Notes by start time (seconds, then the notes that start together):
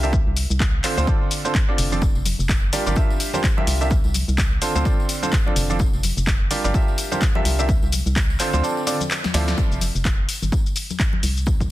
Already playing: C2
0.03 D4 F4 G4 A#4 E5, shaker
0.13 kick, shaker
0.27 C2
0.37 open hi-hat, shaker
0.50 C2, shaker
0.60 kick, clap, shaker
0.84 D3 C4 D4 F4 A4 C5, clap, open hi-hat, shaker
0.97 D2 D3 C4 D4 F4 A4 C5, shaker
1.07 D3 C4 D4 F4 A4 D5, kick, shaker
1.31 open hi-hat, shaker
1.45 D3 C4 D4 F4 A4 C5, shaker
1.55 kick, clap, shaker
1.68 D3 C4 D4 F4 A4 D5
1.78 F1, open hi-hat, shaker
1.92 F3 C4 D4 F4 A4 D5, shaker
2.01 kick, tambourine, shaker
2.15 F1, tambourine
2.25 open hi-hat, tambourine, high conga, shaker
2.39 F1, tambourine, shaker
2.49 kick, clap, tambourine, shaker
2.73 G3 D4 F4 G4 A#4 D5, open hi-hat, tambourine, shaker
2.86 G1 G3 D4 F4 G4 A#4 D5, tambourine, high conga, shaker
2.96 G3 F4 G4 A#4 E5, kick, tambourine, shaker
3.10 tambourine
3.20 open hi-hat, tambourine, shaker
3.33 G3 D4 F4 G4 A#4 C5, tambourine, high conga, shaker
3.44 kick, clap, tambourine, shaker
3.57 G3 D4 F4 G4 A#4 E5, high conga
3.67 C2, open hi-hat, tambourine, shaker
3.81 D4 F4 G4 A#4 E5, tambourine, shaker
3.90 kick, tambourine, shaker
4.04 C2, tambourine
4.14 open hi-hat, tambourine, high conga, shaker
4.28 C2, tambourine, shaker
4.38 kick, clap, tambourine, shaker
4.62 D3 C4 D4 F4 A4 C5, open hi-hat, tambourine, shaker
4.75 D2 D3 C4 D4 F4 A4 C5, tambourine, high conga, shaker
4.85 D3 C4 D4 F4 A4 D5, kick, tambourine, shaker
5.00 tambourine
5.09 open hi-hat, tambourine, shaker
5.23 D3 C4 D4 F4 A4 C5, tambourine, high conga, shaker
5.32 kick, clap, tambourine, shaker
5.46 D3 C4 D4 F4 A4 D5, high conga
5.56 F1, open hi-hat, tambourine, shaker
5.69 F3 C4 D4 F4 A4 D5, tambourine, shaker
5.79 kick, tambourine, shaker
5.93 F1, tambourine
6.03 open hi-hat, tambourine, high conga, shaker
6.17 F1, tambourine, shaker
6.27 kick, clap, tambourine, shaker
6.51 G3 D4 F4 G4 A#4 D5, open hi-hat, tambourine, shaker
6.64 G1 G3 D4 F4 G4 A#4 D5, tambourine, high conga, shaker
6.74 G3 F4 G4 A#4 E5, kick, tambourine, shaker
6.88 tambourine
6.98 open hi-hat, tambourine, shaker
7.12 G3 D4 F4 G4 A#4 C5, tambourine, high conga, shaker
7.21 kick, clap, tambourine, shaker
7.35 G3 D4 F4 G4 A#4 E5, high conga
7.45 C2, open hi-hat, tambourine, shaker
7.59 D4 F4 G4 A#4 E5, tambourine, shaker
7.69 kick, tambourine, shaker
7.82 C2, tambourine
7.92 open hi-hat, tambourine, high conga, shaker
8.06 C2, tambourine, shaker
8.16 kick, clap, tambourine, shaker
8.30 tambourine
8.39 D3 C4 D4 F4 A4 C5, clap, open hi-hat, tambourine, shaker
8.53 D2 D3 C4 D4 F4 A4 C5, tambourine, high conga, shaker
8.63 D3 C4 D4 F4 A4 D5, tambourine, shaker
8.77 tambourine
8.87 D3 C4 D4 F4 A4 D5, open hi-hat, tambourine, shaker
9.00 tambourine, high conga, shaker
9.11 clap, tambourine, shaker
9.24 snare, tambourine, high conga
9.34 D2 F3 C4 E4 F4 A4 D5, snare, open hi-hat, tambourine, shaker
9.48 snare, tambourine, shaker
9.58 kick, tambourine, shaker
9.71 F1, tambourine, shaker
9.81 open hi-hat, tambourine, high conga, shaker
9.95 F1, tambourine, shaker
10.05 kick, clap, tambourine, shaker
10.29 open hi-hat, tambourine, shaker
10.42 G1, tambourine, high conga, shaker
10.52 kick, tambourine, shaker
10.66 tambourine, shaker
10.76 open hi-hat, tambourine, shaker
10.90 tambourine, high conga, shaker
10.99 kick, clap, tambourine, shaker
11.13 high conga
11.23 C2, open hi-hat, tambourine, shaker
11.37 tambourine, shaker
11.46 kick, tambourine, shaker
11.60 C2, kick, tambourine, shaker